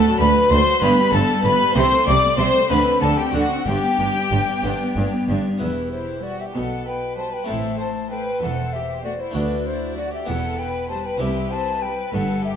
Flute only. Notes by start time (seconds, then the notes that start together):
Already playing: A5
0.20 B5
0.50 C6
0.82 B5
1.13 A5
1.44 B5
1.76 C6
2.07 D6
2.38 C6
2.70 B5
3.02 A5
3.18 G5
3.34 F#5
3.67 G5
5.60 B4
5.92 C5
6.23 D5
6.40 E5
6.55 F#5
6.86 G5
7.17 A5
7.34 G5
7.49 E5
7.80 A5
8.11 G5
8.42 F#5
8.73 E5
9.04 D5
9.20 C5
9.35 B4
9.66 C5
9.97 D5
10.14 E5
10.28 F#5
10.59 G5
10.89 A5
11.06 G5
11.20 E5
11.51 A5
11.82 G5
12.14 F#5
12.44 E5